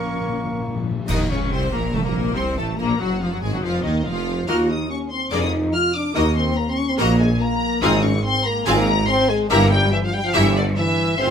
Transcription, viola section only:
0.00 0.84 A#3 soft
0.00 0.84 C#4 medium
1.08 1.16 D#4 medium
1.30 1.51 C#4 medium
1.51 1.73 C4 medium
1.73 1.81 A#3 medium
1.95 2.05 A3 medium
2.05 2.36 A#3 medium
2.37 2.58 C4 medium
2.58 2.79 A3 medium
2.79 3.00 A#3 medium
3.01 3.21 F#3 medium
3.21 3.26 F3 medium
3.32 3.42 F#3 medium
3.42 3.53 G#3 medium
3.52 3.63 F#3 medium
3.62 3.84 F3 medium
3.84 3.92 D#3 medium
4.05 4.46 F3 medium
4.47 4.67 A#3 medium
4.47 4.67 F#4 medium
5.31 5.51 A#3 medium
5.31 5.51 G#4 medium
6.15 6.34 A#3 medium
6.15 6.34 F#4 medium
6.98 7.18 A#3 medium
6.98 7.18 F#4 medium
7.82 8.02 C4 medium
7.82 8.02 F4 medium
8.66 8.86 C4 medium
8.66 8.86 F4 medium
9.50 9.70 E4 medium
9.50 9.70 G4 medium
10.34 10.54 E4 medium
10.34 10.54 G4 medium
11.19 11.30 C4 medium
11.19 11.30 F4 medium

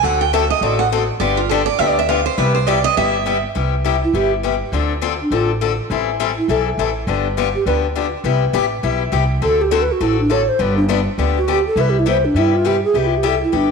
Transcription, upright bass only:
0.03 0.50 D2 medium
0.61 1.08 A1 medium
1.20 1.67 G1 medium
1.79 2.26 D2 medium
2.38 2.85 C2 loud
2.97 3.44 G1 medium
3.56 4.03 C2 medium
4.13 4.61 G1 medium
4.72 5.19 D2 medium
5.31 5.78 A1 medium
5.90 6.37 A1 medium
6.48 6.73 B1 medium
6.78 7.03 A1 medium
7.07 7.54 G1 loud
7.66 8.13 D2 medium
8.24 8.48 C2 medium
8.53 8.79 A1 medium
8.83 9.08 B1 medium
9.12 9.37 C2 medium
9.42 9.89 D2 medium
10.01 10.48 A1 medium
10.59 11.06 G1 loud
11.18 11.65 D2 medium
11.76 12.23 C2 loud
12.34 12.82 G2 medium
12.94 13.41 C2 medium
13.53 13.71 G1 medium

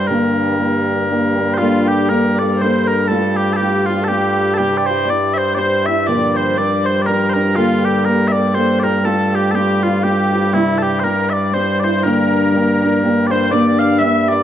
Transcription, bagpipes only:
0.00 14.43 G2 medium
0.00 14.43 G3 medium
0.07 1.54 A#4 medium
1.54 1.88 F4 medium
1.54 1.58 C5 medium
1.88 2.09 G4 medium
2.09 2.39 A#4 loud
2.39 2.61 D5 medium
2.61 2.88 C5 medium
2.88 3.08 A#4 medium
3.08 3.36 A4 medium
3.36 3.53 G4 medium
3.53 3.86 G4 medium
3.53 3.56 A4 medium
3.86 4.04 F4 medium
4.04 4.54 G4 medium
4.04 4.08 A4 medium
4.54 4.78 G4 medium
4.54 4.58 A4 medium
4.78 4.86 D5 medium
4.86 5.10 C5 loud
5.10 5.34 D5 loud
5.34 5.38 E5 medium
5.38 5.54 C5 medium
5.54 5.58 D5 medium
5.58 5.86 C5 medium
5.86 6.07 E5 loud
6.07 6.36 D5 medium
6.36 6.57 C5 medium
6.57 6.86 D5 loud
6.86 7.02 C5 medium
7.02 7.06 D5 medium
7.06 7.30 A#4 medium
7.30 7.56 A#4 medium
7.30 7.34 C5 medium
7.56 7.85 F4 loud
7.85 8.05 G4 medium
8.05 8.28 A#4 loud
8.28 8.32 E5 medium
8.32 8.54 D5 medium
8.54 8.79 C5 medium
8.79 8.83 D5 medium
8.83 9.05 A#4 medium
9.05 9.35 A4 medium
9.35 9.51 G4 medium
9.51 9.83 G4 medium
9.51 9.55 A4 medium
9.83 10.03 F4 medium
10.03 10.53 G4 medium
10.53 10.78 E4 medium
10.78 10.82 A4 medium
10.82 11.00 G4 medium
11.00 11.04 C5 medium
11.04 11.30 A#4 medium
11.30 11.54 D5 medium
11.30 11.33 E5 medium
11.54 11.79 C5 medium
11.79 11.84 D5 medium
11.84 12.03 C5 medium
12.03 13.27 A#4 medium
13.27 13.51 C5 medium
13.27 13.31 D5 medium
13.51 13.79 D5 loud
13.79 13.99 F5 loud
13.99 14.29 E5 loud
14.29 14.43 D5 medium

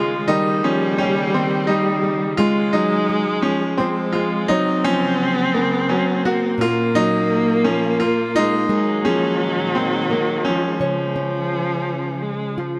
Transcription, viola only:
0.00 0.30 G#3 medium
0.28 2.39 G3 loud
2.38 3.79 G#3 loud
3.79 4.50 G#3 medium
4.48 6.59 C4 loud
6.59 8.72 A#3 loud
8.71 10.82 F#3 loud
10.81 12.24 F3 medium
12.22 12.61 G#3 medium
12.59 12.79 F3 medium

